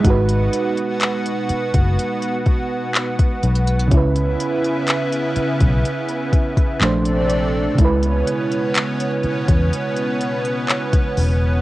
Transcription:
<<
  \new Staff \with { instrumentName = "FM electric piano" } { \time 4/4 \key cis \minor \tempo 4 = 62 <gis dis' fis' b'>1 | <cis cis' e' b'>2. <ais, a d' bis'>4 | <cis gis e' b'>1 | }
  \new Staff \with { instrumentName = "Analog synth pad" } { \time 4/4 \key cis \minor <b, b fis'>1 | <cis b e'>2. <bis, a d'>4 | <b, b cis'>1 | }
  \new Staff \with { instrumentName = "Fingered electric bass" } { \clef bass \time 4/4 \key cis \minor gis,,8 r4 r16 fis,,16 r4. b,,8 | cis,8 r4 r16 b,,16 r4 ais,,4 | cis,8 r4 r16 e,16 r4. e,,8 | }
  \new DrumStaff \with { instrumentName = "Drums" } \drummode { \time 4/4 <hh bd>16 hh16 hh16 hh16 <hc hh>16 hh16 hh16 <hh bd>16 hh16 hh16 <hh bd>8 <hc hh>16 <hh bd>16 <hh hho>32 hh32 hh32 hh32 | <hh bd>16 hh16 hh16 hh16 <hc hh>16 hh16 hh16 <hh bd>16 hh16 hh16 <hh bd>16 <hh bd>16 <hc hh>16 hh16 hh8 | <hh bd>16 hh16 hh16 hh16 <hc hh>16 hh16 hh16 <hh bd>16 hh16 hh16 hh16 hh16 <hc hh>16 <hh bd>16 hho8 | }
>>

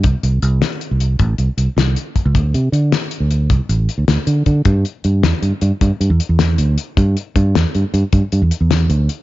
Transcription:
<<
  \new Staff \with { instrumentName = "Fingered electric bass" } { \clef bass \time 12/8 \key d \mixolydian \tempo 4. = 104 c,16 r16 c,8 c,8 r8. c,8. a,,8 c,16 r16 c,16 r16 c,8 r8. cis,16 | d,8 c8 d8 r8. d,8. c,16 r16 a,,8 r16 d,16 d,16 r16 d8 d8 | g,8 r8 g,8 e,16 r16 g,16 r16 g,16 r16 g,16 r16 g,16 e,16 r16 e,8. d,8 r8 | g,8 r8 g,8 e,16 r16 g,16 r16 g,16 r16 g,16 r16 g,16 e,16 r16 e,8. d,8 r8 | }
  \new DrumStaff \with { instrumentName = "Drums" } \drummode { \time 12/8 <hh bd>8 hh8 hh8 <hh sn>8 hh8 hh8 <hh bd>8 hh8 hh8 <hh sn>8 hh8 <hh bd>8 | <hh bd>8 hh8 hh8 <hh sn>8 hh8 hh8 <hh bd>8 hh8 hh8 <hh sn>8 hh8 <hh bd>8 | <hh bd>8 hh8 hh8 <hh sn>8 hh8 hh8 <hh bd>8 hh8 hh8 <hh sn>8 hh8 hh8 | <hh bd>8 hh8 <hh bd>8 <hh sn>8 hh8 hh8 <hh bd>8 hh8 hh8 <hh sn>8 hh8 hh8 | }
>>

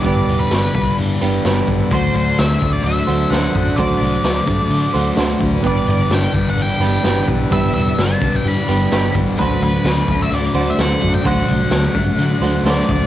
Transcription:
<<
  \new Staff \with { instrumentName = "Lead electric guitar" } { \time 4/4 \key g \major \tempo 4 = 128 d''8. b'16 b'4 r2 | c''8 c''8 e''8. d''16 e''4 fis''4 | d''2. r4 | d''8 d''8 g''8. fis''16 g''4. r8 |
e''8 e''8 a''8. g''16 b''4. r8 | b'8 b'4~ b'16 e''16 d''8. e''16 fis''8. g''16 | fis''2. d''8 d''8 | }
  \new Staff \with { instrumentName = "Overdriven electric guitar" } { \time 4/4 \key g \major <g b d' g' b'>2~ <g b d' g' b'>8 <g b d' g' b'>8 <g b d' g' b'>4 | <d fis a d' fis' c''>2~ <d fis a d' fis' c''>8 <d fis a d' fis' c''>8 <d fis a d' fis' c''>4 | <d fis a d' fis' c''>2~ <d fis a d' fis' c''>8 <d fis a d' fis' c''>8 <d fis a d' fis' c''>4 | <g b d' g' b'>2~ <g b d' g' b'>8 <g b d' g' b'>8 <g b d' g' b'>4 |
<g b d' g' b'>2~ <g b d' g' b'>8 <g b d' g' b'>8 <g b d' g' b'>4 | <d fis a d' fis' c''>2~ <d fis a d' fis' c''>8 <d fis a d' fis' c''>8 <d fis a d' fis' c''>4 | <d fis a d' fis' c''>2~ <d fis a d' fis' c''>8 <d fis a d' fis' c''>8 <d fis a d' fis' c''>4 | }
  \new Staff \with { instrumentName = "Distorted electric guitar" } { \clef bass \time 4/4 \key g \major <g, d g>4. <g, d g>4. <g, d g>4 | <d a d'>4. <d a d'>4. <d a d'>4 | <d a d'>4. <d a d'>4. <d a d'>4 | <g, d g>4. <g, d g>4. <g, d g>4 |
<g, d g>4. <g, d g>4. <g, d g>4 | <d a d'>4. <d a d'>4. <d a d'>4 | <d a d'>4. <d a d'>4. <d a d'>4 | }
  \new Staff \with { instrumentName = "Clean electric guitar" } { \clef bass \time 4/4 \key g \major <e b>8 e8 d'8 b8 e8 e8 b8 e8 | fis8 fis8 c'8 a8 fis8 fis8 a8 fis8 | fis8 fis8 c'8 a8 fis8 fis8 a8 fis8 | e8 e8 d'8 b8 e8 e8 b8 e8 |
e8 e8 d'8 b8 e8 e8 b8 e8 | fis8 fis8 c'8 a8 fis8 fis8 a8 fis8 | fis8 fis8 c'8 a8 fis8 fis8 a8 fis8 | }
  \new Staff \with { instrumentName = "Picked electric bass" } { \clef bass \time 4/4 \key g \major g,,8 e,,8 g,,8 c,8 g,8 g,,8 g,,8 g,,8 | d,8 d,8 d,8 d,8 d,8 d,8 d,8 fis,8 | d,8 c,8 d,8 g,8 d8 d,8 d,8 d,8 | g,,8 g,,8 g,,8 g,,8 g,,8 g,,8 g,,8 b,,8 |
g,,8 e,,8 g,,8 c,8 g,8 g,,8 g,,8 g,,8 | d,8 d,8 d,8 d,8 d,8 d,8 d,8 fis,8 | d,8 c,8 d,8 g,8 d8 d,8 d,8 d,8 | }
  \new DrumStaff \with { instrumentName = "Drums" } \drummode { \time 4/4 <hho bd>8 hho8 <hho sn>8 <hho bd>8 hho8 hho8 <hho sn>8 <hho bd>8 | <hho bd>8 hho8 <hho sn>8 <hho bd>8 hho8 hho8 <hho sn>8 <hho bd>8 | <hho bd>8 hho8 <hho sn>8 <hho bd>8 hho8 hho8 <hho sn>8 <hho bd>8 | <hho bd>8 hho8 <hho sn>8 <hho bd>8 hho8 hho8 <hho sn>8 <hho bd>8 |
<hho bd>8 hho8 <hho sn>8 <hho bd>8 hho8 hho8 <hho sn>8 <hho bd>8 | <hho bd>8 hho8 <hho sn>8 <hho bd>8 hho8 hho8 <hho sn>8 <hho bd>8 | <hho bd>8 hho8 <hho sn>8 <hho bd>8 hho8 hho8 <hho sn>8 <hho bd>8 | }
>>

